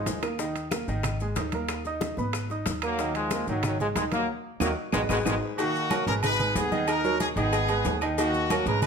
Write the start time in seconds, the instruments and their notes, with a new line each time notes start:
Already playing: trombone section F3 G#3, grand piano D#4 D#5 D#6
0.06 upright bass D#2, low bongo, high conga, high timbale, low timbale, maracas
0.22 grand piano A#3 A#4 A#5, low bongo, high conga, high timbale, claves, maracas
0.39 grand piano D#3 D#4 D#5, high bongo, high conga, maracas
0.55 high conga, high timbale, maracas
0.71 grand piano A#3 A#4 A#5, high bongo, high conga, high timbale, claves, maracas
0.88 upright bass G#1, grand piano D#3 D#4 D#5, high conga, maracas
1.03 high bongo, high conga, low conga, high timbale, claves, maracas
1.20 grand piano G#3 G#4 G#5, high conga, maracas
1.36 upright bass D#2, grand piano D#4 D#5 D#6, high bongo, low bongo, high conga, high timbale, low timbale, maracas
1.52 grand piano A#3 A#4 A#5, high conga, high timbale, maracas
1.68 high bongo, high conga, high timbale, claves, maracas
1.85 grand piano D#4 D#5 D#6, high bongo, high conga, maracas
2.01 high bongo, high conga, high timbale, maracas
2.17 upright bass G#1, grand piano B3 B4 B5, high bongo, high conga, maracas
2.33 high bongo, high conga, high timbale, claves, maracas
2.50 grand piano D#4 D#5 D#6, high bongo, high conga, maracas
2.66 upright bass D#2, high bongo, low bongo, high conga, high timbale, maracas
2.82 trombone section F#3 A#3, grand piano A#3 A#4 A#5, high conga, high timbale, claves, maracas
2.99 grand piano D#3 D#4 D#5, high bongo, high conga, maracas
3.15 trombone section F3 G#3, high conga, high timbale, maracas
3.31 grand piano A#3 A#4 A#5, high bongo, high conga, high timbale, claves, maracas
3.47 upright bass G#1, trombone section D#3 F#3, grand piano D#3 D#4 D#5, high conga, maracas
3.63 trombone section D#3 F#3, high bongo, high conga, low conga, high timbale, claves, maracas
3.80 trombone section F3 G#3, grand piano G#3 G#4 G#5, high conga, low conga, maracas
3.95 upright bass D#2, trombone section D#3 G#3, grand piano D#4 D#5 D#6, high bongo, low bongo, high conga, high timbale, maracas
4.12 trombone section F#3 A#3, grand piano A#3 A#4 A#5, high conga, high timbale, maracas
4.60 upright bass D#2, trombone section D#3 F#3 A#3, grand piano F#4 A#4 D#5, low bongo, high conga, high timbale, claves, maracas
4.92 upright bass G#1, trombone section B2 D#3 G#3, grand piano G#4 B4 D#5, low bongo, high conga, high timbale, claves, maracas
5.09 upright bass G#1, trombone section B2 D#3 G#3, baritone saxophone G#3, grand piano G#4 B4 D#5, low bongo, high conga, high timbale, claves, maracas
5.25 upright bass G#1, baritone saxophone G#2, trombone section B2 D#3 G#3, grand piano G#4 B4 D#5, low bongo, high conga, high timbale, claves, maracas
5.58 grand piano D#3 D#4 D#5, horn section A#3 F#4, cowbell, high conga, low agogo, maracas
5.74 high conga, maracas
5.90 grand piano F#3 F#4 A#4, cowbell, high conga, low agogo, claves, maracas
6.07 upright bass G#1, grand piano G#3 G#4 B4, horn section C#4 A#4, cowbell, high conga, maracas
6.23 horn section D#4 B4, cowbell, high conga, low conga, low agogo, claves, maracas
6.40 grand piano G#3 G#4 B4, high conga, low conga, maracas
6.56 upright bass D#2, horn section B3 G#4, cowbell, high conga, low timbale, low agogo, maracas
6.72 grand piano D#3 D#4 D#5, high conga, maracas
6.88 horn section D#4 A#4, cowbell, high conga, low agogo, claves, maracas
7.04 grand piano F#3 F#4 A#4, high conga, maracas
7.20 horn section D#4 G#4, cowbell, high conga, low agogo, maracas
7.36 upright bass G#1, grand piano D#3 D#4 D#5, horn section B3 G#4, cowbell, high conga, maracas
7.53 cowbell, high conga, low agogo, claves, maracas
7.69 grand piano G#3 G#4 B4, cowbell, high conga, low agogo, maracas
7.85 upright bass D#2, cowbell, high conga, low timbale, maracas
8.01 grand piano D#3 D#4 D#5, cowbell, high conga, low agogo, claves, maracas
8.18 grand piano D#3 D#4 D#5, horn section A#3 F#4, cowbell, high conga, low agogo, maracas
8.34 high conga, maracas
8.50 grand piano F#3 F#4 A#4, cowbell, high conga, low agogo, claves, maracas
8.66 upright bass G#1, grand piano G#3 G#4 B4, horn section C#4 A#4, cowbell, high conga, maracas
8.82 horn section D#4 B4, cowbell, high conga, low conga, low agogo, claves, maracas